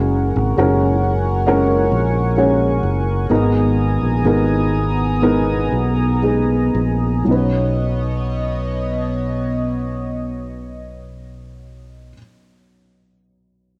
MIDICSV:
0, 0, Header, 1, 5, 480
1, 0, Start_track
1, 0, Key_signature, 5, "major"
1, 0, Tempo, 896861
1, 1272, Tempo, 936037
1, 1747, Time_signature, 4, 2, 24, 8
1, 2232, Tempo, 974026
1, 2712, Tempo, 1025641
1, 3672, Tempo, 1063830
1, 6612, End_track
2, 0, Start_track
2, 0, Title_t, "Analog synth pad"
2, 0, Program_c, 0, 89
2, 0, Note_on_c, 0, 70, 70
2, 0, Note_on_c, 0, 78, 68
2, 0, Note_on_c, 0, 80, 65
2, 0, Note_on_c, 0, 85, 77
2, 1728, Note_off_c, 0, 78, 0
2, 1728, Note_off_c, 0, 80, 0
2, 1728, Note_off_c, 0, 85, 0
2, 1729, Note_off_c, 0, 70, 0
2, 1740, Note_on_c, 0, 80, 66
2, 1741, Note_on_c, 0, 59, 65
2, 1742, Note_on_c, 0, 82, 56
2, 1742, Note_on_c, 0, 87, 79
2, 3650, Note_off_c, 0, 80, 0
2, 3651, Note_off_c, 0, 59, 0
2, 3651, Note_off_c, 0, 82, 0
2, 3652, Note_off_c, 0, 87, 0
2, 3674, Note_on_c, 0, 59, 54
2, 3676, Note_on_c, 0, 75, 67
2, 3677, Note_on_c, 0, 73, 56
2, 3678, Note_on_c, 0, 47, 66
2, 5863, Note_off_c, 0, 59, 0
2, 5864, Note_off_c, 0, 75, 0
2, 5866, Note_off_c, 0, 73, 0
2, 5867, Note_off_c, 0, 47, 0
2, 6612, End_track
3, 0, Start_track
3, 0, Title_t, "Upright piano"
3, 0, Program_c, 1, 0
3, 0, Control_c, 1, 64, 127
3, 0, Note_on_c, 1, 49, 52
3, 0, Note_on_c, 1, 56, 62
3, 0, Note_on_c, 1, 61, 53
3, 0, Note_on_c, 1, 66, 53
3, 0, Note_on_c, 1, 70, 66
3, 285, Note_off_c, 1, 56, 0
3, 286, Note_off_c, 1, 61, 0
3, 288, Note_off_c, 1, 66, 0
3, 289, Note_off_c, 1, 70, 0
3, 305, Note_on_c, 1, 56, 61
3, 309, Note_on_c, 1, 61, 66
3, 312, Note_on_c, 1, 66, 60
3, 314, Note_on_c, 1, 70, 75
3, 527, Note_off_c, 1, 49, 0
3, 761, Note_off_c, 1, 56, 0
3, 763, Note_off_c, 1, 61, 0
3, 765, Note_off_c, 1, 66, 0
3, 766, Note_off_c, 1, 70, 0
3, 785, Note_on_c, 1, 56, 69
3, 787, Note_on_c, 1, 61, 69
3, 790, Note_on_c, 1, 66, 66
3, 793, Note_on_c, 1, 70, 80
3, 1247, Note_off_c, 1, 56, 0
3, 1248, Note_off_c, 1, 61, 0
3, 1249, Note_off_c, 1, 66, 0
3, 1251, Note_off_c, 1, 70, 0
3, 1268, Note_on_c, 1, 56, 56
3, 1271, Note_on_c, 1, 61, 50
3, 1274, Note_on_c, 1, 66, 51
3, 1277, Note_on_c, 1, 73, 66
3, 1721, Note_off_c, 1, 56, 0
3, 1722, Note_off_c, 1, 61, 0
3, 1724, Note_off_c, 1, 66, 0
3, 1725, Note_off_c, 1, 73, 0
3, 1743, Note_on_c, 1, 56, 59
3, 1746, Note_on_c, 1, 59, 48
3, 1747, Note_on_c, 1, 51, 47
3, 1748, Note_on_c, 1, 44, 51
3, 1749, Note_on_c, 1, 63, 51
3, 1752, Note_on_c, 1, 70, 64
3, 1753, Control_c, 1, 64, 0
3, 1844, Control_c, 1, 64, 127
3, 2206, Note_off_c, 1, 56, 0
3, 2208, Note_off_c, 1, 59, 0
3, 2209, Note_off_c, 1, 63, 0
3, 2210, Note_off_c, 1, 70, 0
3, 2231, Note_on_c, 1, 56, 62
3, 2232, Note_on_c, 1, 59, 55
3, 2235, Note_on_c, 1, 63, 56
3, 2239, Note_on_c, 1, 70, 63
3, 2451, Note_off_c, 1, 51, 0
3, 2452, Note_off_c, 1, 44, 0
3, 2687, Note_off_c, 1, 56, 0
3, 2688, Note_off_c, 1, 59, 0
3, 2689, Note_off_c, 1, 63, 0
3, 2691, Note_off_c, 1, 70, 0
3, 2710, Note_on_c, 1, 56, 57
3, 2713, Note_on_c, 1, 59, 60
3, 2716, Note_on_c, 1, 63, 56
3, 2717, Note_on_c, 1, 70, 67
3, 3158, Note_off_c, 1, 56, 0
3, 3160, Note_off_c, 1, 59, 0
3, 3161, Note_off_c, 1, 63, 0
3, 3162, Note_off_c, 1, 70, 0
3, 3180, Note_on_c, 1, 56, 46
3, 3183, Note_on_c, 1, 59, 43
3, 3186, Note_on_c, 1, 63, 43
3, 3188, Note_on_c, 1, 68, 53
3, 3646, Note_off_c, 1, 56, 0
3, 3647, Note_off_c, 1, 59, 0
3, 3648, Note_off_c, 1, 63, 0
3, 3650, Note_off_c, 1, 68, 0
3, 3659, Note_on_c, 1, 54, 45
3, 3670, Note_on_c, 1, 61, 35
3, 3675, Note_on_c, 1, 35, 38
3, 3678, Control_c, 1, 64, 0
3, 3679, Note_on_c, 1, 63, 42
3, 3690, Note_on_c, 1, 71, 49
3, 3760, Control_c, 1, 64, 127
3, 5848, Note_off_c, 1, 54, 0
3, 5858, Note_off_c, 1, 61, 0
3, 5863, Note_off_c, 1, 35, 0
3, 5868, Note_off_c, 1, 63, 0
3, 5878, Note_off_c, 1, 71, 0
3, 6612, End_track
4, 0, Start_track
4, 0, Title_t, "Steel-string acoustic guitar"
4, 0, Program_c, 2, 25
4, 0, Note_on_c, 2, 54, 64
4, 0, Note_on_c, 2, 61, 63
4, 149, Note_off_c, 2, 61, 0
4, 153, Note_off_c, 2, 54, 0
4, 6612, End_track
5, 0, Start_track
5, 0, Title_t, "Fingered electric bass"
5, 0, Program_c, 3, 33
5, 0, Note_on_c, 3, 30, 76
5, 170, Note_off_c, 3, 30, 0
5, 191, Note_on_c, 3, 32, 73
5, 301, Note_off_c, 3, 32, 0
5, 309, Note_on_c, 3, 30, 75
5, 1007, Note_off_c, 3, 30, 0
5, 1027, Note_on_c, 3, 34, 61
5, 1487, Note_off_c, 3, 34, 0
5, 1505, Note_on_c, 3, 30, 63
5, 1728, Note_off_c, 3, 30, 0
5, 1748, Note_on_c, 3, 32, 73
5, 2090, Note_off_c, 3, 32, 0
5, 2112, Note_on_c, 3, 34, 60
5, 2225, Note_off_c, 3, 34, 0
5, 2229, Note_on_c, 3, 32, 69
5, 2926, Note_off_c, 3, 32, 0
5, 2946, Note_on_c, 3, 35, 54
5, 3407, Note_off_c, 3, 35, 0
5, 3425, Note_on_c, 3, 34, 60
5, 3654, Note_off_c, 3, 34, 0
5, 3671, Note_on_c, 3, 35, 56
5, 5860, Note_off_c, 3, 35, 0
5, 6612, End_track
0, 0, End_of_file